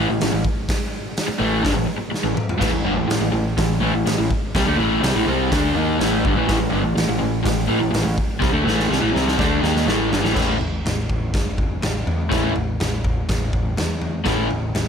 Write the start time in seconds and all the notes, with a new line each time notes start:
0.09 A1 A2 E3
0.20 A1 A2 E3, snare, open hi-hat
0.32 A1 A2 E3
0.45 kick
0.69 kick, snare, open hi-hat
1.17 snare, open hi-hat
1.28 muted overdriven electric guitar stroke, muted picked electric bass stroke
1.39 A1 A2 E3 A3
1.63 G1 G2 D3, kick, snare, open hi-hat
1.75 A1 A2 E3
1.87 muted overdriven electric guitar stroke, muted picked electric bass stroke
1.98 muted overdriven electric guitar stroke, muted picked electric bass stroke
2.12 muted overdriven electric guitar stroke, muted picked electric bass stroke, snare
2.23 A1 A2 E3
2.36 muted overdriven electric guitar stroke, muted picked electric bass stroke, mid tom
2.49 floor tom
2.59 A1 A2 E3, kick, snare, crash
2.72 A1 A2 E3
2.83 G1 G2 D3
2.95 A1 A2 E3
3.07 A1 A2 E3, snare, open hi-hat
3.19 A1 A2 E3
3.32 A1 A2 E3
3.57 A1 A2 E3, kick, snare, open hi-hat
3.80 A1 A2 E3
3.94 A1 A2 E3
4.06 A1 A2 E3, snare, open hi-hat
4.18 A1 A2 E3
4.31 kick
4.55 C2 C3 G3, kick, snare, open hi-hat
4.66 D2 D3 A3
4.77 A1 A2 E3 A3
5.02 C2 C3 G3, snare, open hi-hat
5.14 A1 A2 E3
5.27 C2 C3 G3 C4
5.51 D2 D3 A3 D4, kick, snare, open hi-hat
5.75 D#2 D#3 A#3 D#4
5.99 A1 A2 E3 A3, snare, open hi-hat
6.25 G1 G2 D3, kick
6.36 A1 A2 E3
6.47 A1 A2 E3, kick, snare, open hi-hat
6.60 A1 A2 E3
6.70 G1 G2 D3
6.83 A1 A2 E3
6.95 A1 A2 E3, snare, open hi-hat
7.08 A1 A2 E3
7.18 A1 A2 E3
7.43 A1 A2 E3, kick, snare, open hi-hat
7.67 A1 A2 E3
7.80 A1 A2 E3
7.91 A1 A2 E3, open hi-hat
7.95 snare
8.03 A1 A2 E3
8.18 kick
8.40 C2 C3 G3, kick, snare
8.51 D2 D3 A3
8.64 A1 A2 E3 A3
8.68 snare
8.80 snare
8.89 C2 C3 G3, snare
9.00 A1 A2 E3
9.12 C2 C3 G3 C4, snare
9.28 snare
9.38 D2 D3 A3 D4, kick, snare
9.61 D#2 D#3 A#3 D#4, snare
9.77 snare
9.86 A1 A2 E3 A3, snare
10.09 G1 G2 D3, snare
10.21 A1 A2 E3
10.25 snare
10.33 A1 A2 E3 A3 C#4 E4, kick, floor tom, crash
10.37 snare
10.59 A1, floor tom
10.85 A1, snare, floor tom
11.09 A1, kick, floor tom
11.34 G1, kick, snare, floor tom
11.58 kick, floor tom
11.81 A1, snare, floor tom
12.06 E2, floor tom
12.30 A1 A2 E3 A3 C#4 E4, kick, snare, floor tom
12.55 A1, floor tom
12.80 A1, snare, floor tom
13.04 kick, floor tom
13.29 A1, kick, snare, floor tom
13.53 A1, kick, floor tom
13.77 E2, snare, floor tom
14.02 floor tom
14.24 A1 A2 E3 A3 C#4 E4, kick, snare, floor tom
14.50 A1, floor tom
14.74 A1, snare, floor tom